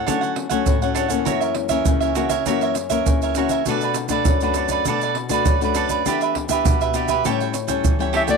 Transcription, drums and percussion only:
0.08 pandeiro, shaker, surdo
0.23 pandeiro, shaker
0.36 pandeiro
0.50 pandeiro, shaker, surdo
0.66 pandeiro, shaker, surdo
0.82 pandeiro, shaker
0.96 pandeiro, shaker
1.10 pandeiro, shaker, surdo
1.26 pandeiro, shaker, surdo
1.41 pandeiro, shaker
1.55 pandeiro
1.69 pandeiro, shaker, surdo
1.85 pandeiro, shaker, surdo
2.01 pandeiro, shaker
2.15 pandeiro, shaker
2.30 pandeiro, shaker, surdo
2.46 pandeiro, shaker, surdo
2.61 pandeiro, shaker
2.75 pandeiro, shaker
2.90 pandeiro, shaker, surdo
3.06 pandeiro, shaker, surdo
3.22 pandeiro, shaker
3.35 pandeiro, shaker
3.49 pandeiro, shaker, surdo
3.66 pandeiro, shaker, surdo
3.81 pandeiro, shaker
3.94 pandeiro, shaker
4.09 pandeiro, shaker, surdo
4.25 pandeiro, shaker, surdo
4.41 pandeiro, shaker
4.54 pandeiro, shaker
4.69 pandeiro, shaker, surdo
4.85 pandeiro, shaker, surdo
5.01 pandeiro, shaker
5.15 pandeiro
5.29 pandeiro, shaker, surdo
5.46 pandeiro, shaker, surdo
5.61 pandeiro, shaker
5.75 pandeiro, shaker
5.89 pandeiro, shaker, surdo
6.06 pandeiro, shaker, surdo
6.21 pandeiro, shaker
6.35 pandeiro, surdo
6.49 pandeiro, shaker, surdo
6.65 pandeiro, shaker, surdo
6.81 pandeiro, shaker
6.94 pandeiro, shaker
7.08 pandeiro, shaker, surdo
7.25 pandeiro, shaker, surdo
7.40 pandeiro, shaker
7.54 pandeiro, shaker
7.68 pandeiro, shaker, surdo
7.84 pandeiro, shaker, surdo
8.00 pandeiro, shaker
8.14 pandeiro
8.28 pandeiro, shaker, surdo

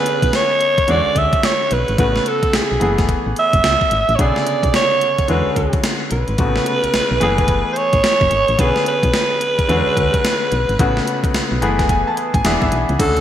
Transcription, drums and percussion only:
0.06 closed hi-hat
0.22 kick, closed hi-hat
0.33 snare, closed hi-hat
0.61 closed hi-hat
0.78 kick, closed hi-hat
0.88 closed hi-hat
1.16 kick, closed hi-hat
1.33 kick, closed hi-hat
1.43 snare, closed hi-hat
1.71 closed hi-hat
1.88 closed hi-hat
1.98 kick, closed hi-hat
2.16 snare
2.26 closed hi-hat
2.43 kick, closed hi-hat
2.53 snare, closed hi-hat
2.81 closed hi-hat
2.98 kick, snare, closed hi-hat
3.09 kick, closed hi-hat
3.36 closed hi-hat
3.53 kick, closed hi-hat
3.64 snare, closed hi-hat
3.81 kick
3.91 closed hi-hat
4.09 closed hi-hat
4.19 kick, closed hi-hat
4.36 snare
4.47 closed hi-hat
4.63 kick, closed hi-hat
4.74 snare, closed hi-hat
5.01 closed hi-hat
5.18 kick, closed hi-hat
5.28 closed hi-hat
5.56 kick, closed hi-hat
5.73 kick, closed hi-hat
5.84 snare, closed hi-hat
6.11 closed hi-hat
6.28 closed hi-hat
6.38 kick, closed hi-hat
6.56 snare
6.66 closed hi-hat
6.84 closed hi-hat
6.94 snare, closed hi-hat
7.21 closed hi-hat
7.38 kick, closed hi-hat
7.48 kick, closed hi-hat
7.76 closed hi-hat
7.93 kick, closed hi-hat
8.04 snare, closed hi-hat
8.21 kick
8.31 closed hi-hat
8.48 closed hi-hat
8.59 kick, closed hi-hat
8.76 snare
8.86 closed hi-hat
9.03 kick, closed hi-hat
9.14 snare, closed hi-hat
9.41 closed hi-hat
9.59 kick, closed hi-hat
9.69 closed hi-hat
9.97 kick, closed hi-hat
10.14 kick, closed hi-hat
10.25 snare, closed hi-hat
10.52 closed hi-hat
10.69 closed hi-hat
10.79 kick, closed hi-hat
10.97 snare
11.07 closed hi-hat
11.24 kick, closed hi-hat
11.34 snare, closed hi-hat
11.62 closed hi-hat
11.79 kick, snare, closed hi-hat
11.89 kick, closed hi-hat
12.17 closed hi-hat
12.34 kick, closed hi-hat
12.45 snare, closed hi-hat
12.62 kick
12.72 closed hi-hat
12.89 closed hi-hat
12.99 kick, closed hi-hat, crash
13.17 closed hi-hat

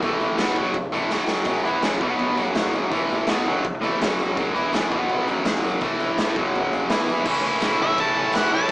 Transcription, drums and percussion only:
0.03 kick, floor tom, tambourine
0.20 floor tom, tambourine
0.38 snare, floor tom, tambourine
0.56 kick, floor tom, tambourine
0.74 kick, floor tom, tambourine
0.92 floor tom, tambourine
1.10 snare, tambourine
1.28 snare, tambourine
1.45 kick, floor tom, tambourine, splash
1.64 floor tom, tambourine
1.82 snare, floor tom, tambourine
2.01 kick, floor tom, tambourine
2.19 floor tom
2.37 floor tom, tambourine
2.54 snare, floor tom, tambourine
2.73 floor tom, tambourine
2.91 kick, floor tom, tambourine
3.09 floor tom, tambourine
3.27 snare, floor tom, tambourine
3.46 floor tom, tambourine
3.65 kick, floor tom
3.83 floor tom, tambourine
4.01 snare, floor tom, tambourine
4.20 floor tom, tambourine
4.37 kick, floor tom, tambourine
4.56 floor tom, tambourine
4.73 snare, floor tom, tambourine
4.91 kick, floor tom, tambourine
5.09 floor tom
5.28 floor tom, tambourine
5.45 snare, floor tom, tambourine
5.64 floor tom, tambourine
5.81 kick, floor tom, tambourine
6.00 floor tom, tambourine
6.18 snare, floor tom, tambourine
6.36 kick, floor tom, tambourine
6.55 floor tom, tambourine
6.73 floor tom, tambourine
6.90 snare, floor tom, tambourine
7.08 floor tom, tambourine
7.25 kick, crash
7.61 kick, snare, tambourine, crash
7.98 kick, crash
8.32 kick, snare, tambourine, crash

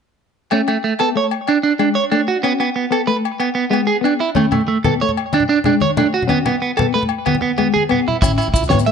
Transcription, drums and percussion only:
0.51 low agogo
0.68 low agogo
0.99 low agogo
1.31 low agogo
1.48 low agogo
1.79 low agogo
2.12 low agogo
2.44 low agogo
2.60 low agogo
2.92 low agogo
3.25 low agogo
3.40 low agogo
3.73 low agogo
4.05 low agogo
4.35 high conga, low conga, low agogo
4.44 low conga
4.52 low conga, low agogo
4.61 low conga
4.84 high conga, low conga, low agogo
5.00 low conga
5.09 low conga
5.17 low agogo
5.33 high conga, low agogo
5.40 low conga
5.64 low conga, low agogo
5.81 high conga
5.97 low conga, low agogo
6.22 low conga
6.29 high conga, low conga, low agogo
6.38 low conga
6.46 low conga, low agogo
6.77 high conga, low conga, low agogo
7.03 low conga
7.09 low conga, low agogo
7.26 high conga, low agogo
7.35 low conga
7.42 high conga
7.58 high conga, low agogo
7.76 high conga
7.89 low conga, low agogo
8.08 low conga
8.22 kick, closed hi-hat, high conga, low conga, low agogo, maracas
8.33 low conga
8.38 closed hi-hat, low agogo, maracas
8.54 kick, closed hi-hat, maracas
8.63 low conga, maracas
8.70 snare, closed hi-hat, high conga, low agogo
8.79 low conga, maracas
8.86 closed hi-hat

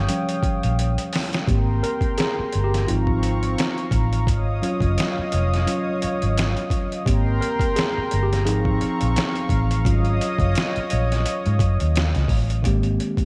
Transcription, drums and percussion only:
0.09 closed hi-hat
0.29 closed hi-hat
0.43 kick, closed hi-hat
0.63 closed hi-hat
0.79 closed hi-hat
0.98 closed hi-hat
1.13 snare, open hi-hat
1.33 snare, closed hi-hat
1.48 kick, closed hi-hat
1.84 closed hi-hat
2.01 kick, closed hi-hat
2.18 snare, closed hi-hat
2.53 closed hi-hat
2.74 snare, closed hi-hat
2.88 closed hi-hat
3.07 kick
3.23 closed hi-hat
3.43 closed hi-hat
3.58 snare, closed hi-hat
3.78 closed hi-hat
3.91 kick, closed hi-hat
4.13 closed hi-hat
4.27 kick, closed hi-hat
4.63 closed hi-hat
4.80 kick, closed hi-hat
4.98 snare, closed hi-hat
5.32 closed hi-hat
5.54 snare, closed hi-hat
5.67 closed hi-hat
6.02 closed hi-hat
6.22 closed hi-hat
6.38 snare, closed hi-hat
6.57 closed hi-hat
6.70 kick, closed hi-hat
6.92 closed hi-hat
7.06 kick, closed hi-hat
7.42 closed hi-hat
7.59 kick, closed hi-hat
7.76 snare, closed hi-hat
8.11 closed hi-hat
8.33 snare, closed hi-hat
8.47 closed hi-hat
8.65 kick
8.81 closed hi-hat
9.01 closed hi-hat
9.16 snare, closed hi-hat
9.36 closed hi-hat
9.49 kick, closed hi-hat
9.71 closed hi-hat
9.85 kick, closed hi-hat
10.05 closed hi-hat
10.21 closed hi-hat
10.39 kick, closed hi-hat
10.55 snare, closed hi-hat
10.76 closed hi-hat
10.90 closed hi-hat
11.12 snare, closed hi-hat
11.26 closed hi-hat
11.46 closed hi-hat
11.59 kick, closed hi-hat
11.80 closed hi-hat
11.96 snare, closed hi-hat
12.15 snare, closed hi-hat
12.28 kick, open hi-hat
12.50 closed hi-hat
12.64 kick, closed hi-hat
12.83 closed hi-hat
13.00 closed hi-hat
13.17 kick, closed hi-hat

